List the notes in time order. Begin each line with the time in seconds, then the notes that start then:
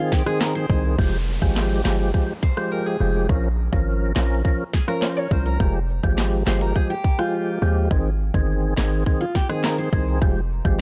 Already playing: D#3 C4 F4 G#4
0.12 G4, kick, snare, closed hi-hat
0.26 D#3 C4 G#4, cross-stick
0.41 A#4, snare, clap, closed hi-hat
0.55 C5
0.69 C2 D#3 C4 G#4, kick, closed hi-hat
0.98 F1 F3 G#3 G4, kick, downlifter
1.42 G#1 F3 G#3 G4, kick
1.56 snare, clap
1.85 G1 F3 G#3 G4, snare, clap
2.14 F3 G#3 G4, kick
2.43 C5, kick
2.57 F3 G#3 G4, cross-stick
2.72 A#4
2.86 G#4
3.00 F1 F3 G#3 G4
3.29 A#1 F3 C#4 A#4, kick
3.72 G#1 F3 C#4 A#4, kick
4.16 A#1 F3 C#4 A#4, snare, clap
4.44 F3 C#4 A#4, kick
4.73 G#4, kick, snare
4.88 F3 C#4 A#4, cross-stick
5.02 C5, snare, clap
5.17 C#5
5.31 C2 F3 C#4 A#4 C5, kick
5.46 A#4
5.60 F1 F3 G#3 G4, kick
6.03 G#1 F3 G#3 G4, kick
6.18 snare, clap
6.46 G1 F3 G#3 G4 C5, snare, clap
6.61 A#4
6.75 F3 G#3 G4 G#4, kick
6.90 G4
7.04 kick
7.19 F3 G#3 F4 G4, cross-stick
7.62 D#2 F3 G#3 G4
7.91 G#1 D#3 C4 G#4, kick
8.34 G1 D#3 C4 G#4, kick
8.77 G#1 D#3 C4 G#4, snare, clap
9.06 D#3 C4 G#4, kick
9.21 F4
9.35 G4, kick, snare
9.49 D#3 C4 G#4, cross-stick
9.64 A#4, snare, clap
9.78 C5
9.93 C2 D#3 C4 G#4, kick
10.21 F1 F3 G#3 G4, kick
10.65 G#1 F3 G#3 G4, kick